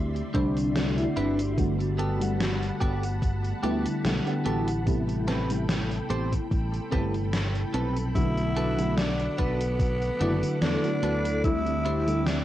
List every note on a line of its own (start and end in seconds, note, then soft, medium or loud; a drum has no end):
0.00 0.21 D2 medium
0.00 0.34 D3 medium
0.00 0.34 G3 medium
0.00 4.83 G3 medium
0.00 0.35 A3 medium
0.00 0.35 C4 medium
0.00 0.98 E4 loud
0.00 1.54 D5 medium
0.00 1.55 E5 medium
0.00 1.55 C6 medium
0.16 closed hi-hat soft
0.16 tambourine soft
0.34 1.06 C2 loud
0.34 0.71 D3 loud
0.34 0.71 G3 medium
0.34 0.71 A3 medium
0.34 0.71 C4 medium
0.34 0.56 D4 medium
0.34 0.71 D4 loud
0.34 0.57 E4 medium
0.34 0.57 G4 medium
0.34 0.57 C5 medium
0.34 kick loud
0.34 closed hi-hat loud
0.57 closed hi-hat medium
0.57 tambourine medium
0.75 0.92 D3 medium
0.75 0.92 G3 medium
0.75 0.92 A3 medium
0.75 0.93 C4 medium
0.75 0.93 F#4 loud
0.75 snare loud
0.75 closed hi-hat soft
0.75 tambourine soft
0.97 1.53 D3 medium
0.97 1.53 G3 medium
0.97 1.53 A3 medium
0.97 1.53 C4 medium
0.97 1.54 E4 loud
0.97 closed hi-hat soft
0.97 tambourine soft
1.17 2.70 G1 medium
1.17 1.39 D4 medium
1.17 1.39 E4 medium
1.17 1.39 G4 medium
1.17 1.39 B4 medium
1.17 closed hi-hat loud
1.39 closed hi-hat medium
1.39 tambourine medium
1.57 2.15 D3 medium
1.57 2.16 G3 medium
1.57 2.16 A3 medium
1.57 2.16 B3 medium
1.57 2.16 F#4 loud
1.57 4.83 F#5 medium
1.57 4.83 A5 medium
1.57 4.83 B5 medium
1.57 kick loud
1.57 closed hi-hat medium
1.57 tambourine soft
1.80 closed hi-hat soft
1.80 tambourine soft
1.98 2.21 B3 loud
1.98 2.21 F#4 medium
1.98 2.21 G4 medium
1.98 2.21 A4 medium
1.98 closed hi-hat medium
2.19 3.58 D3 medium
2.19 3.58 G3 medium
2.19 3.59 A3 medium
2.19 3.59 B3 medium
2.19 3.59 F#5 medium
2.19 closed hi-hat medium
2.19 tambourine medium
2.41 snare loud
2.41 closed hi-hat medium
2.41 tambourine soft
2.63 closed hi-hat soft
2.63 tambourine soft
2.81 3.52 G1 loud
2.81 3.03 B3 medium
2.81 3.03 F#4 medium
2.81 3.03 G4 medium
2.81 3.03 A4 loud
2.81 kick loud
2.81 closed hi-hat medium
3.03 closed hi-hat medium
3.03 tambourine medium
3.22 kick loud
3.22 closed hi-hat medium
3.22 tambourine soft
3.45 closed hi-hat soft
3.45 tambourine soft
3.62 3.85 D2 loud
3.62 3.99 D3 medium
3.62 4.00 G3 medium
3.62 4.00 A3 medium
3.62 4.00 B3 medium
3.62 3.85 B3 medium
3.62 4.00 E4 loud
3.62 3.85 F#4 medium
3.62 3.85 G4 medium
3.62 3.85 A4 loud
3.62 closed hi-hat loud
3.85 muted fingered electric bass stroke soft
3.85 closed hi-hat medium
3.85 tambourine medium
4.04 4.18 B1 medium
4.04 4.21 D3 medium
4.04 4.21 G3 medium
4.04 4.21 A3 medium
4.04 4.21 B3 medium
4.04 4.21 G4 loud
4.04 snare loud
4.04 closed hi-hat medium
4.04 tambourine soft
4.25 4.82 D3 medium
4.25 4.82 G3 medium
4.25 4.82 A3 medium
4.25 4.82 B3 medium
4.25 4.82 F#5 loud
4.25 closed hi-hat soft
4.25 tambourine soft
4.45 5.99 A1 medium
4.45 4.67 B3 medium
4.45 4.67 F#4 medium
4.45 4.68 G4 medium
4.45 4.68 A4 medium
4.45 closed hi-hat loud
4.68 closed hi-hat soft
4.68 tambourine soft
4.86 5.44 C3 medium
4.86 5.44 G3 medium
4.86 5.44 A3 medium
4.86 5.45 B3 medium
4.86 5.45 E4 loud
4.86 11.40 A4 medium
4.86 8.12 G5 medium
4.86 11.40 B5 medium
4.86 kick loud
4.86 closed hi-hat medium
4.86 tambourine soft
5.09 closed hi-hat soft
5.09 tambourine soft
5.27 5.50 C4 medium
5.27 5.50 G4 medium
5.27 5.50 A4 medium
5.27 5.50 B4 loud
5.27 snare medium
5.27 closed hi-hat medium
5.48 6.87 C3 medium
5.48 6.87 G3 medium
5.48 6.88 A3 medium
5.48 6.88 E4 medium
5.48 closed hi-hat soft
5.48 tambourine medium
5.69 snare loud
5.69 closed hi-hat medium
5.69 tambourine soft
5.91 closed hi-hat soft
5.91 tambourine soft
6.10 6.37 A1 medium
6.10 6.32 C4 medium
6.10 6.32 G4 medium
6.10 6.32 A4 medium
6.10 6.32 C5 loud
6.10 closed hi-hat medium
6.32 kick medium
6.32 closed hi-hat medium
6.32 tambourine medium
6.51 6.78 A1 medium
6.51 kick loud
6.51 closed hi-hat medium
6.51 tambourine soft
6.73 closed hi-hat soft
6.73 tambourine soft
6.90 7.63 G1 loud
6.90 8.10 G3 medium
6.90 8.11 A3 medium
6.90 8.10 C4 medium
6.90 7.14 C4 medium
6.90 8.12 E4 medium
6.90 7.14 G4 medium
6.90 7.14 A4 medium
6.90 7.14 B4 loud
6.90 kick loud
6.90 closed hi-hat medium
7.14 closed hi-hat medium
7.14 tambourine medium
7.33 snare loud
7.33 closed hi-hat medium
7.33 tambourine soft
7.55 closed hi-hat soft
7.55 tambourine soft
7.74 9.27 B1 medium
7.74 7.96 C4 medium
7.74 7.96 G4 medium
7.74 7.96 A4 medium
7.74 7.97 B4 medium
7.74 closed hi-hat medium
7.97 closed hi-hat soft
7.97 tambourine soft
8.15 8.73 D3 medium
8.15 8.73 F#3 medium
8.15 8.73 A3 medium
8.15 8.74 B3 medium
8.15 8.99 E4 loud
8.15 8.74 F#4 loud
8.15 11.41 F#5 medium
8.15 12.44 D6 medium
8.15 kick loud
8.15 closed hi-hat medium
8.15 tambourine soft
8.37 closed hi-hat soft
8.37 tambourine soft
8.56 8.79 D4 medium
8.56 8.79 F#4 medium
8.56 8.79 A4 medium
8.56 8.79 B4 medium
8.56 closed hi-hat medium
8.77 10.16 D3 medium
8.77 10.16 F#3 medium
8.77 10.16 A3 medium
8.77 10.17 B3 medium
8.77 10.17 F#4 medium
8.77 closed hi-hat soft
8.77 tambourine soft
8.97 9.40 D4 medium
8.97 snare loud
8.97 closed hi-hat medium
8.97 tambourine soft
9.20 closed hi-hat soft
9.20 tambourine soft
9.38 10.10 B1 loud
9.38 10.61 B3 loud
9.38 9.61 D4 medium
9.38 9.61 F#4 medium
9.38 9.61 A4 medium
9.38 9.61 B4 medium
9.38 kick loud
9.38 closed hi-hat medium
9.61 closed hi-hat soft
9.61 tambourine medium
9.80 kick loud
9.80 closed hi-hat medium
9.80 tambourine soft
10.02 closed hi-hat soft
10.02 tambourine soft
10.20 10.42 F#1 loud
10.20 10.57 D3 loud
10.20 10.57 F#3 medium
10.20 10.57 A3 medium
10.20 10.58 B3 medium
10.20 10.43 D4 medium
10.20 10.58 E4 loud
10.20 10.43 F#4 medium
10.20 10.43 A4 medium
10.20 10.43 D5 medium
10.20 closed hi-hat medium
10.43 muted fingered electric bass stroke soft
10.43 closed hi-hat medium
10.43 tambourine medium
10.61 10.76 E2 loud
10.61 10.78 D3 medium
10.61 10.79 F#3 medium
10.61 10.79 A3 medium
10.61 10.79 B3 medium
10.61 11.40 D4 loud
10.61 10.79 A4 loud
10.61 snare loud
10.61 closed hi-hat medium
10.61 tambourine soft
10.83 11.39 D3 medium
10.83 11.39 F#3 medium
10.83 11.39 A3 medium
10.83 11.40 B3 medium
10.83 11.40 F#4 medium
10.83 closed hi-hat soft
10.83 tambourine soft
11.03 12.44 D2 medium
11.03 11.25 D4 medium
11.03 11.25 F#4 medium
11.03 11.25 A4 medium
11.03 11.25 B4 loud
11.03 closed hi-hat medium
11.25 closed hi-hat soft
11.25 tambourine soft
11.44 12.02 D3 loud
11.44 12.02 G3 medium
11.44 12.02 A3 medium
11.44 12.02 C4 medium
11.44 12.28 E4 loud
11.44 12.03 E4 loud
11.44 12.44 G4 medium
11.44 12.44 E5 medium
11.44 kick loud
11.44 closed hi-hat medium
11.44 tambourine soft
11.66 closed hi-hat soft
11.66 tambourine soft
11.85 12.07 D4 medium
11.85 12.07 E4 medium
11.85 12.07 G4 medium
11.85 12.07 C5 loud
11.85 closed hi-hat medium
12.06 12.44 D3 medium
12.06 12.44 G3 medium
12.06 12.44 A3 medium
12.06 12.44 C4 medium
12.06 12.44 E4 medium
12.06 closed hi-hat soft
12.06 tambourine medium
12.26 12.44 D4 medium
12.26 snare loud
12.26 closed hi-hat soft
12.26 tambourine soft